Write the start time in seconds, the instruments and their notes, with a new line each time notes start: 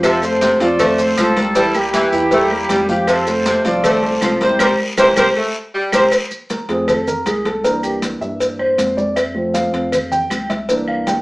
Already playing: analog synth bass F2, grand piano F3 F4 F5
0.03 saxophone section C3, horn section C4 F4 A4, cowbell, high conga, long guiro, claves, maracas
0.22 grand piano A3 A4 C5, horn section F4 A4 C5, high conga, maracas
0.41 saxophone section C3, cowbell, high conga, short guiro, maracas
0.60 analog synth bass F2, grand piano F3 F4 F5, horn section F4 A4 D5, cowbell, short guiro, maracas
0.79 saxophone section A3, grand piano A3 A4 C5, cowbell, high conga, low conga, long guiro, claves, maracas
0.98 grand piano A3 A4 C5, horn section C5, high conga, maracas
1.17 analog synth bass C2, saxophone section F3, horn section C4 F4 A4, cowbell, high conga, short guiro, claves, maracas
1.36 grand piano G3 G4 A#4, cowbell, high conga, short guiro, maracas
1.55 grand piano E3 E4 E5, saxophone section G3, horn section E4 A4, cowbell, high conga, long guiro, maracas
1.74 grand piano G3 G4 A#4, horn section A#3 E4 G4, high conga, claves, maracas
1.93 saxophone section E3, cowbell, high conga, short guiro, maracas
2.12 analog synth bass E2, grand piano E3 E4 E5, high conga, short guiro, maracas
2.31 grand piano G3 G4 A#4, saxophone section A3, cowbell, high conga, long guiro, maracas
2.51 grand piano G3 G4 A#4, high conga, claves
2.69 analog synth bass F2, saxophone section G3, cowbell, high conga, short guiro, maracas
2.89 grand piano F3 F4 F5, horn section G4, high conga, short guiro, maracas
3.07 saxophone section C3, horn section C4 F4 A4, cowbell, high conga, long guiro, claves, maracas
3.27 grand piano A3 A4 C5, horn section F4 A4 C5, high conga, maracas
3.46 saxophone section C3, cowbell, high conga, short guiro, maracas
3.64 analog synth bass C2, grand piano F3 F4 F5, horn section F4 A4 D5, cowbell, high conga, short guiro, maracas
3.84 grand piano A3 A4 C5, saxophone section A3, cowbell, high conga, low conga, long guiro, claves, maracas
4.03 grand piano A3 A4 C5, high conga
4.21 analog synth bass C2, saxophone section F3, cowbell, high conga, short guiro, claves, maracas
4.41 grand piano G3 G4 A#4, horn section E4 G4 C5, cowbell, high conga, short guiro, maracas
4.59 analog synth bass C2, saxophone section G3, grand piano G4 A#4 C5, horn section G4 A#4 C5, cowbell, high conga, long guiro, claves, maracas
4.97 analog synth bass C2, saxophone section E3, grand piano G4 A#4 C5, horn section G4 A#4 C5, cowbell, high conga, long guiro, claves, maracas
5.16 analog synth bass C2, grand piano G4 A#4 C5, horn section G4 A#4 C5, cowbell, high conga, long guiro, claves, maracas
5.36 saxophone section A3
5.74 saxophone section G3
5.92 analog synth bass C2, grand piano G4 A#4 C5, horn section G4 A#4 C5, cowbell, high conga, long guiro, claves, maracas
6.12 cowbell, high conga, claves, maracas
6.31 high conga, maracas
6.50 grand piano A#4, cowbell, high conga, maracas
6.69 analog synth bass F2, grand piano F3 A3 C4 G#4, cowbell, high conga, maracas
6.88 grand piano A4, cowbell, high conga, low conga, claves, maracas
7.07 grand piano A#4, high conga, low conga, maracas
7.26 analog synth bass C2, grand piano G#4, cowbell, high conga, claves, maracas
7.45 grand piano A4, cowbell, high conga, maracas
7.64 grand piano E3 A#3 D4 A#4, cowbell, high conga, maracas
7.83 grand piano G4, high conga, claves, maracas
8.02 cowbell, high conga, maracas
8.21 analog synth bass G2, grand piano E5, high conga, maracas
8.40 cowbell, high conga, maracas
8.59 grand piano C5, high conga, claves
8.78 analog synth bass F2, cowbell, high conga, maracas
8.97 grand piano D5, high conga, maracas
9.16 grand piano E5, cowbell, high conga, claves, maracas
9.35 grand piano F3 A3 C4, high conga
9.54 grand piano F5, cowbell, high conga, maracas
9.73 analog synth bass F2, cowbell, high conga, maracas
9.92 cowbell, high conga, low conga, claves, maracas
10.12 grand piano G5, high conga, low conga, maracas
10.30 analog synth bass C2, cowbell, high conga, claves, maracas
10.50 grand piano E5, cowbell, high conga, maracas
10.69 grand piano E3 A#3 D4, cowbell, high conga, maracas
10.88 grand piano F5, high conga, claves
11.07 grand piano G5, cowbell, high conga, maracas